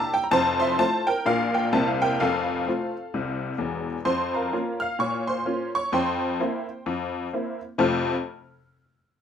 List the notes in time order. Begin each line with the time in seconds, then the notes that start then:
Already playing: A#3 D4 G4
0.00 A5
0.14 G5
0.24 A#5
0.31 F1 F2 C5 A5
0.60 E5 C6
0.78 A3 C4 F4 C5 A5
1.07 A#4 G5
1.26 A#1 A#2 A#3 D4 F4 A#4 F5
1.54 A#4 G5
1.73 C2 C3 A#3 C4 E4 A5
1.87 F5
2.02 A#4 G5
2.20 F1 F2 A4 F5
2.67 A3 C4 F4
3.14 C2 C3
3.58 E1 E2
4.05 F2 C5 C6
4.34 A#4 F5 A#5
4.53 A#3 C#4 F4
4.80 F5 F6
4.99 A#2 C#5 C#6
5.27 C5 C6
5.46 A#3 C#4 F4
5.75 C#5 C#6
5.92 F2 C5 G5 C6
6.40 A#3 C4 E4
6.86 F2
7.33 A#3 C4 E4
7.78 F2 C3 A3 C4 F4 A4 F6